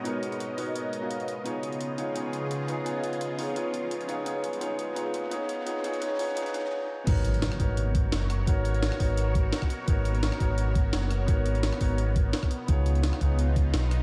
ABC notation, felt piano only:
X:1
M:4/4
L:1/16
Q:"Swing 16ths" 1/4=171
K:G#dor
V:1 name="Felt piano"
[B,DFAc]6 [B,DFAc] z4 [B,DFAe]3 z2 | [B,DEGc]6 [B,DEGc] z [B,DEGc]6 [B,DEGc] z | [B,DEGc]6 [B,DEGc] z [B,DEGc]6 [B,DEGc] z | [B,DEGc]4 [B,DEGc]4 [B,DEGc]4 [B,DEGc]4 |
[B,DEGc]2 [B,DEGc]2 [B,DEGc]2 [B,DEGc]2 [B,DEGc]2 [B,DEGc]2 z4 | [B,DFAc]6 [B,DFAc] z8 z | [B,DFAc]6 [B,DFAc] z8 z | [B,DFAc]6 [B,DFAc] z8 z |
[B,DFAc]6 [B,DFAc] z8 z | [B,DEGc]6 [B,DEGc] z8 z |]